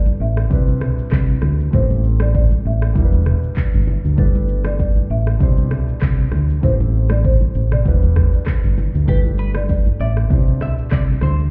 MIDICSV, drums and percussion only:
0, 0, Header, 1, 2, 480
1, 0, Start_track
1, 0, Tempo, 612245
1, 1358, Time_signature, 4, 2, 24, 8
1, 9021, End_track
2, 0, Start_track
2, 0, Title_t, "Drums"
2, 46, Note_on_c, 9, 63, 76
2, 46, Note_on_c, 9, 82, 54
2, 124, Note_off_c, 9, 82, 0
2, 125, Note_off_c, 9, 63, 0
2, 288, Note_on_c, 9, 82, 59
2, 291, Note_on_c, 9, 37, 96
2, 366, Note_off_c, 9, 82, 0
2, 369, Note_off_c, 9, 37, 0
2, 397, Note_on_c, 9, 36, 116
2, 400, Note_on_c, 9, 82, 86
2, 476, Note_off_c, 9, 36, 0
2, 478, Note_off_c, 9, 82, 0
2, 531, Note_on_c, 9, 63, 48
2, 531, Note_on_c, 9, 82, 61
2, 609, Note_off_c, 9, 63, 0
2, 609, Note_off_c, 9, 82, 0
2, 637, Note_on_c, 9, 45, 106
2, 637, Note_on_c, 9, 82, 48
2, 638, Note_on_c, 9, 37, 96
2, 716, Note_off_c, 9, 37, 0
2, 716, Note_off_c, 9, 45, 0
2, 716, Note_off_c, 9, 82, 0
2, 775, Note_on_c, 9, 82, 56
2, 853, Note_off_c, 9, 82, 0
2, 875, Note_on_c, 9, 37, 97
2, 875, Note_on_c, 9, 39, 96
2, 880, Note_on_c, 9, 36, 93
2, 883, Note_on_c, 9, 82, 71
2, 953, Note_off_c, 9, 37, 0
2, 953, Note_off_c, 9, 39, 0
2, 958, Note_off_c, 9, 36, 0
2, 962, Note_off_c, 9, 82, 0
2, 1010, Note_on_c, 9, 82, 62
2, 1088, Note_off_c, 9, 82, 0
2, 1112, Note_on_c, 9, 37, 92
2, 1119, Note_on_c, 9, 63, 74
2, 1119, Note_on_c, 9, 64, 71
2, 1190, Note_off_c, 9, 37, 0
2, 1197, Note_off_c, 9, 63, 0
2, 1197, Note_off_c, 9, 64, 0
2, 1257, Note_on_c, 9, 82, 55
2, 1335, Note_off_c, 9, 82, 0
2, 1358, Note_on_c, 9, 36, 117
2, 1359, Note_on_c, 9, 82, 74
2, 1437, Note_off_c, 9, 36, 0
2, 1438, Note_off_c, 9, 82, 0
2, 1492, Note_on_c, 9, 82, 52
2, 1494, Note_on_c, 9, 63, 81
2, 1571, Note_off_c, 9, 82, 0
2, 1572, Note_off_c, 9, 63, 0
2, 1598, Note_on_c, 9, 82, 62
2, 1676, Note_off_c, 9, 82, 0
2, 1724, Note_on_c, 9, 37, 121
2, 1729, Note_on_c, 9, 63, 83
2, 1733, Note_on_c, 9, 82, 65
2, 1802, Note_off_c, 9, 37, 0
2, 1808, Note_off_c, 9, 63, 0
2, 1811, Note_off_c, 9, 82, 0
2, 1838, Note_on_c, 9, 82, 77
2, 1839, Note_on_c, 9, 36, 100
2, 1842, Note_on_c, 9, 64, 84
2, 1916, Note_off_c, 9, 82, 0
2, 1918, Note_off_c, 9, 36, 0
2, 1920, Note_off_c, 9, 64, 0
2, 1965, Note_on_c, 9, 63, 73
2, 1968, Note_on_c, 9, 82, 55
2, 2043, Note_off_c, 9, 63, 0
2, 2047, Note_off_c, 9, 82, 0
2, 2208, Note_on_c, 9, 82, 56
2, 2212, Note_on_c, 9, 37, 96
2, 2287, Note_off_c, 9, 82, 0
2, 2290, Note_off_c, 9, 37, 0
2, 2317, Note_on_c, 9, 36, 116
2, 2320, Note_on_c, 9, 82, 84
2, 2395, Note_off_c, 9, 36, 0
2, 2398, Note_off_c, 9, 82, 0
2, 2449, Note_on_c, 9, 63, 47
2, 2451, Note_on_c, 9, 82, 62
2, 2528, Note_off_c, 9, 63, 0
2, 2529, Note_off_c, 9, 82, 0
2, 2557, Note_on_c, 9, 45, 96
2, 2557, Note_on_c, 9, 82, 48
2, 2558, Note_on_c, 9, 37, 94
2, 2636, Note_off_c, 9, 37, 0
2, 2636, Note_off_c, 9, 45, 0
2, 2636, Note_off_c, 9, 82, 0
2, 2693, Note_on_c, 9, 82, 55
2, 2772, Note_off_c, 9, 82, 0
2, 2795, Note_on_c, 9, 39, 97
2, 2799, Note_on_c, 9, 36, 100
2, 2803, Note_on_c, 9, 82, 70
2, 2873, Note_off_c, 9, 39, 0
2, 2877, Note_off_c, 9, 36, 0
2, 2881, Note_off_c, 9, 82, 0
2, 2929, Note_on_c, 9, 82, 64
2, 3007, Note_off_c, 9, 82, 0
2, 3037, Note_on_c, 9, 63, 78
2, 3037, Note_on_c, 9, 64, 73
2, 3115, Note_off_c, 9, 63, 0
2, 3115, Note_off_c, 9, 64, 0
2, 3174, Note_on_c, 9, 82, 54
2, 3253, Note_off_c, 9, 82, 0
2, 3277, Note_on_c, 9, 36, 116
2, 3278, Note_on_c, 9, 82, 74
2, 3356, Note_off_c, 9, 36, 0
2, 3356, Note_off_c, 9, 82, 0
2, 3410, Note_on_c, 9, 82, 52
2, 3413, Note_on_c, 9, 63, 80
2, 3489, Note_off_c, 9, 82, 0
2, 3491, Note_off_c, 9, 63, 0
2, 3517, Note_on_c, 9, 82, 62
2, 3595, Note_off_c, 9, 82, 0
2, 3642, Note_on_c, 9, 37, 123
2, 3649, Note_on_c, 9, 63, 84
2, 3651, Note_on_c, 9, 82, 62
2, 3720, Note_off_c, 9, 37, 0
2, 3727, Note_off_c, 9, 63, 0
2, 3730, Note_off_c, 9, 82, 0
2, 3757, Note_on_c, 9, 82, 77
2, 3759, Note_on_c, 9, 36, 96
2, 3761, Note_on_c, 9, 64, 83
2, 3835, Note_off_c, 9, 82, 0
2, 3837, Note_off_c, 9, 36, 0
2, 3839, Note_off_c, 9, 64, 0
2, 3885, Note_on_c, 9, 63, 72
2, 3888, Note_on_c, 9, 82, 55
2, 3964, Note_off_c, 9, 63, 0
2, 3967, Note_off_c, 9, 82, 0
2, 4128, Note_on_c, 9, 82, 58
2, 4132, Note_on_c, 9, 37, 95
2, 4207, Note_off_c, 9, 82, 0
2, 4210, Note_off_c, 9, 37, 0
2, 4237, Note_on_c, 9, 36, 115
2, 4240, Note_on_c, 9, 82, 86
2, 4316, Note_off_c, 9, 36, 0
2, 4318, Note_off_c, 9, 82, 0
2, 4370, Note_on_c, 9, 82, 63
2, 4371, Note_on_c, 9, 63, 47
2, 4448, Note_off_c, 9, 82, 0
2, 4449, Note_off_c, 9, 63, 0
2, 4477, Note_on_c, 9, 37, 101
2, 4477, Note_on_c, 9, 45, 100
2, 4477, Note_on_c, 9, 82, 51
2, 4555, Note_off_c, 9, 45, 0
2, 4555, Note_off_c, 9, 82, 0
2, 4556, Note_off_c, 9, 37, 0
2, 4614, Note_on_c, 9, 82, 54
2, 4692, Note_off_c, 9, 82, 0
2, 4715, Note_on_c, 9, 37, 98
2, 4715, Note_on_c, 9, 39, 96
2, 4720, Note_on_c, 9, 36, 98
2, 4724, Note_on_c, 9, 82, 70
2, 4794, Note_off_c, 9, 37, 0
2, 4794, Note_off_c, 9, 39, 0
2, 4798, Note_off_c, 9, 36, 0
2, 4802, Note_off_c, 9, 82, 0
2, 4850, Note_on_c, 9, 82, 61
2, 4928, Note_off_c, 9, 82, 0
2, 4952, Note_on_c, 9, 37, 88
2, 4959, Note_on_c, 9, 63, 75
2, 4959, Note_on_c, 9, 64, 77
2, 5031, Note_off_c, 9, 37, 0
2, 5037, Note_off_c, 9, 63, 0
2, 5037, Note_off_c, 9, 64, 0
2, 5097, Note_on_c, 9, 82, 53
2, 5176, Note_off_c, 9, 82, 0
2, 5199, Note_on_c, 9, 36, 116
2, 5200, Note_on_c, 9, 82, 70
2, 5278, Note_off_c, 9, 36, 0
2, 5279, Note_off_c, 9, 82, 0
2, 5332, Note_on_c, 9, 82, 51
2, 5334, Note_on_c, 9, 63, 82
2, 5411, Note_off_c, 9, 82, 0
2, 5413, Note_off_c, 9, 63, 0
2, 5564, Note_on_c, 9, 37, 121
2, 5571, Note_on_c, 9, 63, 83
2, 5573, Note_on_c, 9, 82, 64
2, 5642, Note_off_c, 9, 37, 0
2, 5650, Note_off_c, 9, 63, 0
2, 5651, Note_off_c, 9, 82, 0
2, 5677, Note_on_c, 9, 82, 75
2, 5680, Note_on_c, 9, 36, 102
2, 5683, Note_on_c, 9, 64, 84
2, 5756, Note_off_c, 9, 82, 0
2, 5758, Note_off_c, 9, 36, 0
2, 5762, Note_off_c, 9, 64, 0
2, 5806, Note_on_c, 9, 63, 74
2, 5808, Note_on_c, 9, 82, 54
2, 5884, Note_off_c, 9, 63, 0
2, 5887, Note_off_c, 9, 82, 0
2, 5916, Note_on_c, 9, 82, 48
2, 5994, Note_off_c, 9, 82, 0
2, 6048, Note_on_c, 9, 82, 57
2, 6051, Note_on_c, 9, 45, 95
2, 6052, Note_on_c, 9, 37, 99
2, 6127, Note_off_c, 9, 82, 0
2, 6130, Note_off_c, 9, 37, 0
2, 6130, Note_off_c, 9, 45, 0
2, 6158, Note_on_c, 9, 36, 114
2, 6161, Note_on_c, 9, 82, 85
2, 6237, Note_off_c, 9, 36, 0
2, 6239, Note_off_c, 9, 82, 0
2, 6292, Note_on_c, 9, 82, 62
2, 6293, Note_on_c, 9, 63, 48
2, 6370, Note_off_c, 9, 82, 0
2, 6371, Note_off_c, 9, 63, 0
2, 6399, Note_on_c, 9, 36, 94
2, 6399, Note_on_c, 9, 37, 99
2, 6478, Note_off_c, 9, 36, 0
2, 6478, Note_off_c, 9, 37, 0
2, 6536, Note_on_c, 9, 82, 57
2, 6614, Note_off_c, 9, 82, 0
2, 6636, Note_on_c, 9, 37, 97
2, 6636, Note_on_c, 9, 39, 100
2, 6640, Note_on_c, 9, 36, 92
2, 6644, Note_on_c, 9, 82, 70
2, 6714, Note_off_c, 9, 37, 0
2, 6714, Note_off_c, 9, 39, 0
2, 6719, Note_off_c, 9, 36, 0
2, 6722, Note_off_c, 9, 82, 0
2, 6770, Note_on_c, 9, 82, 61
2, 6848, Note_off_c, 9, 82, 0
2, 6882, Note_on_c, 9, 63, 75
2, 6882, Note_on_c, 9, 64, 74
2, 6882, Note_on_c, 9, 82, 59
2, 6960, Note_off_c, 9, 63, 0
2, 6960, Note_off_c, 9, 64, 0
2, 6960, Note_off_c, 9, 82, 0
2, 7017, Note_on_c, 9, 82, 55
2, 7095, Note_off_c, 9, 82, 0
2, 7119, Note_on_c, 9, 36, 117
2, 7120, Note_on_c, 9, 82, 72
2, 7198, Note_off_c, 9, 36, 0
2, 7198, Note_off_c, 9, 82, 0
2, 7253, Note_on_c, 9, 82, 51
2, 7258, Note_on_c, 9, 63, 81
2, 7332, Note_off_c, 9, 82, 0
2, 7336, Note_off_c, 9, 63, 0
2, 7358, Note_on_c, 9, 82, 62
2, 7436, Note_off_c, 9, 82, 0
2, 7484, Note_on_c, 9, 37, 123
2, 7493, Note_on_c, 9, 63, 87
2, 7493, Note_on_c, 9, 82, 63
2, 7563, Note_off_c, 9, 37, 0
2, 7571, Note_off_c, 9, 63, 0
2, 7572, Note_off_c, 9, 82, 0
2, 7598, Note_on_c, 9, 82, 79
2, 7600, Note_on_c, 9, 36, 100
2, 7607, Note_on_c, 9, 64, 84
2, 7677, Note_off_c, 9, 82, 0
2, 7679, Note_off_c, 9, 36, 0
2, 7686, Note_off_c, 9, 64, 0
2, 7728, Note_on_c, 9, 82, 53
2, 7730, Note_on_c, 9, 63, 73
2, 7806, Note_off_c, 9, 82, 0
2, 7809, Note_off_c, 9, 63, 0
2, 7969, Note_on_c, 9, 82, 56
2, 7972, Note_on_c, 9, 37, 92
2, 8047, Note_off_c, 9, 82, 0
2, 8051, Note_off_c, 9, 37, 0
2, 8078, Note_on_c, 9, 36, 121
2, 8082, Note_on_c, 9, 82, 85
2, 8157, Note_off_c, 9, 36, 0
2, 8160, Note_off_c, 9, 82, 0
2, 8212, Note_on_c, 9, 82, 59
2, 8213, Note_on_c, 9, 63, 46
2, 8290, Note_off_c, 9, 82, 0
2, 8292, Note_off_c, 9, 63, 0
2, 8318, Note_on_c, 9, 45, 104
2, 8318, Note_on_c, 9, 82, 52
2, 8319, Note_on_c, 9, 37, 94
2, 8396, Note_off_c, 9, 45, 0
2, 8397, Note_off_c, 9, 37, 0
2, 8397, Note_off_c, 9, 82, 0
2, 8454, Note_on_c, 9, 82, 57
2, 8533, Note_off_c, 9, 82, 0
2, 8555, Note_on_c, 9, 37, 99
2, 8555, Note_on_c, 9, 39, 99
2, 8560, Note_on_c, 9, 36, 94
2, 8564, Note_on_c, 9, 82, 74
2, 8634, Note_off_c, 9, 37, 0
2, 8634, Note_off_c, 9, 39, 0
2, 8639, Note_off_c, 9, 36, 0
2, 8642, Note_off_c, 9, 82, 0
2, 8689, Note_on_c, 9, 82, 62
2, 8768, Note_off_c, 9, 82, 0
2, 8791, Note_on_c, 9, 37, 93
2, 8800, Note_on_c, 9, 63, 79
2, 8800, Note_on_c, 9, 64, 76
2, 8870, Note_off_c, 9, 37, 0
2, 8878, Note_off_c, 9, 63, 0
2, 8878, Note_off_c, 9, 64, 0
2, 8935, Note_on_c, 9, 82, 54
2, 9013, Note_off_c, 9, 82, 0
2, 9021, End_track
0, 0, End_of_file